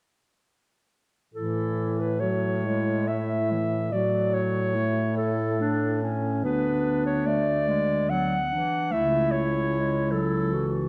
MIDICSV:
0, 0, Header, 1, 5, 480
1, 0, Start_track
1, 0, Key_signature, 3, "major"
1, 0, Tempo, 865801
1, 746, Time_signature, 3, 2, 24, 8
1, 1710, Tempo, 843882
1, 3150, Tempo, 827586
1, 5070, Tempo, 800000
1, 6246, End_track
2, 0, Start_track
2, 0, Title_t, "Clarinet"
2, 0, Program_c, 0, 71
2, 747, Note_on_c, 0, 69, 46
2, 1106, Note_on_c, 0, 71, 42
2, 1115, Note_off_c, 0, 69, 0
2, 1219, Note_on_c, 0, 73, 49
2, 1227, Note_off_c, 0, 71, 0
2, 1705, Note_on_c, 0, 76, 53
2, 1713, Note_off_c, 0, 73, 0
2, 2187, Note_on_c, 0, 74, 46
2, 2196, Note_off_c, 0, 76, 0
2, 2424, Note_on_c, 0, 73, 52
2, 2433, Note_off_c, 0, 74, 0
2, 2894, Note_off_c, 0, 73, 0
2, 2897, Note_on_c, 0, 69, 41
2, 3379, Note_off_c, 0, 69, 0
2, 3629, Note_on_c, 0, 71, 50
2, 3964, Note_off_c, 0, 71, 0
2, 3987, Note_on_c, 0, 73, 46
2, 4105, Note_on_c, 0, 74, 55
2, 4114, Note_off_c, 0, 73, 0
2, 4588, Note_on_c, 0, 78, 65
2, 4597, Note_off_c, 0, 74, 0
2, 5065, Note_on_c, 0, 76, 52
2, 5074, Note_off_c, 0, 78, 0
2, 5303, Note_on_c, 0, 73, 63
2, 5312, Note_off_c, 0, 76, 0
2, 5782, Note_on_c, 0, 69, 51
2, 5791, Note_off_c, 0, 73, 0
2, 6246, Note_off_c, 0, 69, 0
2, 6246, End_track
3, 0, Start_track
3, 0, Title_t, "Clarinet"
3, 0, Program_c, 1, 71
3, 748, Note_on_c, 1, 64, 43
3, 1204, Note_off_c, 1, 64, 0
3, 1223, Note_on_c, 1, 66, 37
3, 1470, Note_on_c, 1, 64, 42
3, 1479, Note_off_c, 1, 66, 0
3, 2187, Note_off_c, 1, 64, 0
3, 2190, Note_on_c, 1, 66, 45
3, 2655, Note_on_c, 1, 64, 39
3, 2663, Note_off_c, 1, 66, 0
3, 3148, Note_on_c, 1, 62, 39
3, 3157, Note_off_c, 1, 64, 0
3, 3395, Note_on_c, 1, 61, 37
3, 3403, Note_off_c, 1, 62, 0
3, 3627, Note_on_c, 1, 62, 49
3, 3636, Note_off_c, 1, 61, 0
3, 4439, Note_off_c, 1, 62, 0
3, 4589, Note_on_c, 1, 59, 36
3, 4836, Note_on_c, 1, 62, 43
3, 4844, Note_off_c, 1, 59, 0
3, 5075, Note_on_c, 1, 64, 56
3, 5084, Note_off_c, 1, 62, 0
3, 6031, Note_on_c, 1, 66, 47
3, 6040, Note_off_c, 1, 64, 0
3, 6246, Note_off_c, 1, 66, 0
3, 6246, End_track
4, 0, Start_track
4, 0, Title_t, "Clarinet"
4, 0, Program_c, 2, 71
4, 747, Note_on_c, 2, 52, 32
4, 1203, Note_off_c, 2, 52, 0
4, 1228, Note_on_c, 2, 54, 36
4, 1464, Note_on_c, 2, 56, 36
4, 1472, Note_off_c, 2, 54, 0
4, 1711, Note_on_c, 2, 57, 39
4, 1720, Note_off_c, 2, 56, 0
4, 1953, Note_on_c, 2, 52, 35
4, 1962, Note_off_c, 2, 57, 0
4, 2181, Note_off_c, 2, 52, 0
4, 2184, Note_on_c, 2, 54, 34
4, 2660, Note_on_c, 2, 57, 33
4, 2669, Note_off_c, 2, 54, 0
4, 3141, Note_off_c, 2, 57, 0
4, 3145, Note_on_c, 2, 62, 40
4, 3379, Note_off_c, 2, 62, 0
4, 3382, Note_on_c, 2, 61, 37
4, 3625, Note_on_c, 2, 59, 37
4, 3634, Note_off_c, 2, 61, 0
4, 4105, Note_on_c, 2, 57, 40
4, 4114, Note_off_c, 2, 59, 0
4, 4346, Note_on_c, 2, 56, 40
4, 4355, Note_off_c, 2, 57, 0
4, 4584, Note_off_c, 2, 56, 0
4, 4587, Note_on_c, 2, 54, 43
4, 4756, Note_off_c, 2, 54, 0
4, 4827, Note_on_c, 2, 52, 39
4, 5064, Note_on_c, 2, 57, 38
4, 5073, Note_off_c, 2, 52, 0
4, 5392, Note_off_c, 2, 57, 0
4, 5549, Note_on_c, 2, 56, 42
4, 5787, Note_on_c, 2, 54, 45
4, 5796, Note_off_c, 2, 56, 0
4, 6028, Note_on_c, 2, 52, 41
4, 6037, Note_off_c, 2, 54, 0
4, 6246, Note_off_c, 2, 52, 0
4, 6246, End_track
5, 0, Start_track
5, 0, Title_t, "Baritone saxophone"
5, 0, Program_c, 3, 67
5, 742, Note_on_c, 3, 45, 36
5, 2164, Note_off_c, 3, 45, 0
5, 2186, Note_on_c, 3, 45, 37
5, 3625, Note_on_c, 3, 38, 38
5, 3634, Note_off_c, 3, 45, 0
5, 4914, Note_off_c, 3, 38, 0
5, 5068, Note_on_c, 3, 37, 46
5, 6246, Note_off_c, 3, 37, 0
5, 6246, End_track
0, 0, End_of_file